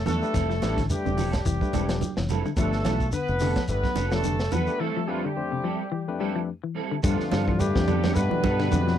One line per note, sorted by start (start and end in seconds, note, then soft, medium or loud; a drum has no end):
0.05 0.21 E2 medium
0.05 0.24 F3 medium
0.05 0.23 F3 medium
0.05 0.86 A3 medium
0.05 0.24 B3 medium
0.05 0.24 D4 medium
0.05 0.86 A4 loud
0.05 0.24 A4 medium
0.05 snare soft
0.05 closed hi-hat soft
0.05 high conga medium
0.05 low conga medium
0.05 shekere medium
0.22 0.34 A3 medium
0.22 0.34 D4 medium
0.22 0.35 G4 medium
0.22 0.35 B4 medium
0.22 shekere soft
0.34 0.60 F1 loud
0.34 0.43 E3 medium
0.34 0.52 G3 medium
0.34 0.53 C4 medium
0.34 0.53 E4 medium
0.34 0.53 A4 medium
0.34 kick medium
0.34 snare soft
0.34 closed hi-hat medium
0.34 shekere medium
0.50 0.66 F3 medium
0.50 snare soft
0.50 shekere soft
0.62 0.88 A1 medium
0.62 0.80 G3 medium
0.62 0.76 A3 medium
0.62 0.80 C4 medium
0.62 0.76 D4 medium
0.62 0.81 E4 medium
0.62 0.76 G4 medium
0.62 0.81 A4 medium
0.62 0.76 B4 medium
0.62 snare medium
0.62 closed hi-hat soft
0.62 high conga medium
0.62 shekere medium
0.77 0.94 D3 medium
0.77 kick medium
0.77 snare soft
0.77 closed hi-hat medium
0.77 shekere soft
0.90 1.31 G3 medium
0.90 1.20 A3 medium
0.90 1.20 D4 medium
0.90 1.20 G4 medium
0.90 1.31 G4 medium
0.90 1.20 B4 medium
0.90 closed hi-hat medium
0.90 low conga medium
0.90 shekere medium
1.05 1.43 E1 medium
1.05 1.13 C3 medium
1.05 high conga medium
1.05 shekere soft
1.17 1.34 F3 medium
1.17 1.35 G3 soft
1.17 1.36 C4 medium
1.17 1.36 E4 medium
1.17 1.36 A4 medium
1.17 open hi-hat medium
1.17 low conga medium
1.17 shekere medium
1.33 2.14 G3 medium
1.33 2.14 G4 medium
1.33 kick medium
1.33 snare medium
1.33 closed hi-hat medium
1.33 shekere soft
1.45 1.60 F1 medium
1.45 1.62 E3 medium
1.45 kick medium
1.45 closed hi-hat medium
1.45 shekere medium
1.61 2.01 A3 medium
1.61 2.02 D4 medium
1.61 2.02 G4 medium
1.61 2.02 B4 medium
1.61 kick medium
1.61 high conga medium
1.61 shekere soft
1.73 1.99 E1 medium
1.73 1.91 G3 medium
1.73 1.83 G3 medium
1.73 1.92 C4 medium
1.73 1.92 E4 medium
1.73 1.92 A4 medium
1.73 kick medium
1.73 closed hi-hat soft
1.73 high conga medium
1.73 shekere medium
1.89 2.06 F3 medium
1.89 snare medium
1.89 closed hi-hat soft
1.89 shekere soft
2.01 closed hi-hat medium
2.01 high conga medium
2.01 low conga medium
2.01 shekere medium
2.17 2.43 F1 medium
2.17 2.34 E3 medium
2.17 snare medium
2.17 shekere soft
2.29 2.47 G3 medium
2.29 2.48 C4 medium
2.29 2.48 E4 medium
2.29 2.48 A4 medium
2.29 closed hi-hat soft
2.29 high conga medium
2.29 low conga medium
2.29 shekere medium
2.45 2.53 D3 medium
2.45 shekere soft
2.57 2.82 G1 loud
2.57 2.75 F3 medium
2.57 2.94 A3 medium
2.57 3.09 A3 medium
2.57 2.75 B3 medium
2.57 2.75 D4 medium
2.57 2.94 D4 medium
2.57 2.94 G4 medium
2.57 2.75 A4 medium
2.57 3.09 A4 loud
2.57 2.94 B4 medium
2.57 kick medium
2.57 closed hi-hat medium
2.57 shekere medium
2.73 snare soft
2.73 shekere soft
2.84 3.10 B1 medium
2.84 3.02 E3 medium
2.84 3.03 F3 medium
2.84 3.03 B3 medium
2.84 3.03 D4 medium
2.84 3.03 A4 medium
2.84 snare medium
2.84 closed hi-hat soft
2.84 high conga medium
2.84 shekere medium
3.00 kick medium
3.00 shekere soft
3.12 3.30 D3 medium
3.12 3.65 B3 medium
3.12 3.65 B4 loud
3.12 closed hi-hat medium
3.12 shekere medium
3.28 3.54 F1 loud
3.28 shekere soft
3.40 3.51 D3 medium
3.40 3.59 F3 medium
3.40 3.54 A3 medium
3.40 3.59 B3 medium
3.40 3.54 D4 medium
3.40 3.59 D4 medium
3.40 3.55 G4 medium
3.40 3.55 A4 medium
3.40 3.59 A4 medium
3.40 snare soft
3.40 open hi-hat medium
3.40 low conga medium
3.40 shekere medium
3.56 3.73 F3 medium
3.56 kick medium
3.56 snare medium
3.56 closed hi-hat soft
3.56 shekere soft
3.68 3.83 G1 medium
3.68 3.88 A3 medium
3.68 4.10 B3 medium
3.68 3.88 D4 medium
3.68 3.88 G4 medium
3.68 3.88 A4 medium
3.68 4.10 B4 medium
3.68 closed hi-hat medium
3.68 shekere medium
3.83 kick medium
3.83 snare soft
3.83 high conga medium
3.83 shekere soft
3.96 4.48 F1 medium
3.96 4.12 F3 medium
3.96 4.11 B3 medium
3.96 4.11 D4 medium
3.96 4.10 A4 medium
3.96 snare soft
3.96 closed hi-hat soft
3.96 high conga medium
3.96 shekere medium
4.11 4.20 F3 medium
4.11 4.36 A3 medium
4.11 4.51 A3 medium
4.11 4.28 B3 soft
4.11 4.36 D4 medium
4.11 4.27 D4 soft
4.11 4.36 G4 medium
4.11 4.27 A4 soft
4.11 4.51 A4 loud
4.11 4.36 B4 medium
4.11 snare medium
4.11 shekere soft
4.24 4.41 D3 medium
4.24 closed hi-hat medium
4.24 high conga medium
4.24 low conga medium
4.24 shekere medium
4.39 snare medium
4.39 shekere soft
4.51 4.67 E2 medium
4.51 4.69 F3 medium
4.51 4.70 B3 medium
4.51 4.81 B3 medium
4.51 4.70 D4 medium
4.51 4.71 A4 medium
4.51 4.81 B4 loud
4.51 muted clean electric guitar stroke medium
4.51 closed hi-hat soft
4.51 high conga medium
4.51 low conga medium
4.51 shekere medium
4.67 4.80 A3 medium
4.67 4.80 D4 medium
4.67 4.80 G4 medium
4.67 4.80 B4 medium
4.67 shekere soft
4.79 4.90 E3 medium
4.79 4.98 G3 medium
4.79 5.08 A3 medium
4.79 4.98 C4 medium
4.79 4.98 E4 medium
4.79 4.98 A4 medium
4.79 5.08 A4 medium
4.97 5.13 F3 medium
5.08 5.22 F2 medium
5.08 5.24 F3 medium
5.08 5.26 G3 medium
5.08 5.22 A3 medium
5.08 5.26 C4 medium
5.08 5.22 D4 medium
5.08 5.26 E4 medium
5.08 5.24 F4 medium
5.08 5.22 G4 medium
5.08 5.27 A4 medium
5.08 5.22 B4 medium
5.25 5.41 D3 medium
5.25 6.36 G3 medium
5.25 6.36 G4 medium
5.36 5.67 F2 medium
5.36 5.67 A3 medium
5.36 5.67 D4 medium
5.36 5.67 G4 medium
5.36 5.67 C5 medium
5.52 5.59 C3 medium
5.64 5.81 F3 medium
5.64 5.82 G3 soft
5.64 5.82 C4 medium
5.64 5.82 E4 medium
5.64 5.83 A4 medium
5.92 6.08 E3 medium
6.08 6.49 F2 medium
6.08 6.49 A3 medium
6.08 6.49 D4 medium
6.08 6.49 G4 medium
6.08 6.49 B4 medium
6.20 6.38 G3 medium
6.20 6.30 G3 medium
6.20 6.38 C4 medium
6.20 6.38 E4 medium
6.20 6.38 A4 medium
6.36 6.52 F3 medium
6.64 6.80 E3 medium
6.75 6.93 G3 medium
6.75 6.94 C4 medium
6.75 6.94 E4 medium
6.75 6.94 A4 medium
6.91 6.99 D3 medium
7.03 7.56 F2 medium
7.03 7.18 G2 medium
7.03 7.62 D3 medium
7.03 7.21 F3 medium
7.03 7.57 F3 medium
7.03 7.21 G3 medium
7.03 7.29 A3 medium
7.03 7.22 B3 medium
7.03 7.22 D4 medium
7.03 7.29 D4 medium
7.03 7.57 F4 medium
7.03 7.29 G4 medium
7.03 7.22 A4 medium
7.03 7.29 B4 medium
7.03 kick medium
7.03 ride bell medium
7.03 high conga soft
7.03 shekere medium
7.20 muted fingered electric bass stroke soft
7.20 snare soft
7.31 7.72 G2 medium
7.31 7.41 D3 medium
7.31 7.50 F3 medium
7.31 7.50 B3 medium
7.31 7.50 D4 medium
7.31 7.51 A4 medium
7.31 snare medium
7.31 ride bell soft
7.31 high conga medium
7.31 shekere soft
7.48 7.65 E3 medium
7.48 kick medium
7.59 8.16 G2 medium
7.59 8.20 D3 medium
7.59 8.16 G3 medium
7.59 7.84 A3 medium
7.59 7.85 D4 medium
7.59 8.16 G4 loud
7.59 7.85 G4 medium
7.59 7.85 B4 medium
7.59 ride bell medium
7.59 high conga soft
7.59 low conga medium
7.59 shekere medium
7.75 8.12 F2 medium
7.75 7.83 F3 medium
7.75 kick medium
7.75 snare medium
7.88 8.03 F3 medium
7.88 8.04 G3 medium
7.88 8.04 B3 medium
7.88 8.03 D4 medium
7.88 8.02 A4 medium
7.88 ride bell medium
7.88 high conga medium
7.88 low conga medium
7.88 shekere soft
8.03 8.20 B3 soft
8.03 8.19 D4 soft
8.03 8.19 A4 soft
8.03 snare medium
8.03 ride bell medium
8.03 high conga medium
8.15 8.31 G2 medium
8.15 8.98 B2 medium
8.15 8.98 G3 medium
8.15 8.40 A3 medium
8.15 8.98 B3 medium
8.15 8.41 D4 medium
8.15 8.41 G4 medium
8.15 8.98 B4 loud
8.15 8.41 B4 medium
8.15 ride bell medium
8.15 high conga soft
8.15 shekere medium
8.31 8.48 E3 medium
8.31 muted fingered electric bass stroke soft
8.31 high conga medium
8.43 8.69 G2 medium
8.43 8.59 F3 medium
8.43 8.59 B3 medium
8.43 8.59 D4 medium
8.43 8.58 A4 medium
8.43 kick medium
8.43 ride bell medium
8.43 high conga loud
8.43 shekere soft
8.59 8.67 D3 medium
8.59 8.75 B3 soft
8.59 8.75 D4 soft
8.59 8.75 A4 soft
8.59 snare soft
8.59 ride bell medium
8.71 8.98 F2 loud
8.71 8.81 D3 medium
8.71 8.96 A3 medium
8.71 8.96 D4 medium
8.71 8.96 G4 medium
8.71 8.96 B4 medium
8.71 ride bell medium
8.71 high conga medium
8.71 shekere medium
8.87 8.95 F3 medium
8.87 snare soft